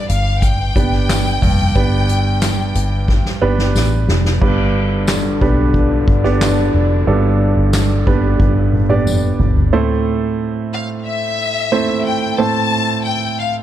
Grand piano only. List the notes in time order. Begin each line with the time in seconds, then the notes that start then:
Already playing: G2 B3 D4 G4 B4
0.76 B3 D4 G4 B4
1.42 G2
1.75 B3 D4 G4 B4
3.41 B3 D4 G4 B4
4.41 G2 B3 D4 G4 B4
5.41 B3 D4 G4 B4
6.24 B3 D4 G4 D5
7.07 G2 B3 D4 G4 A4
8.07 B3 D4 G4 B4
8.89 B3 D4 G4 D5
9.73 A2 A3 C4 E4 A4 C5
11.72 A3 C4 E4 A4 C5
12.38 A2 A3 C4 E4 A4 C5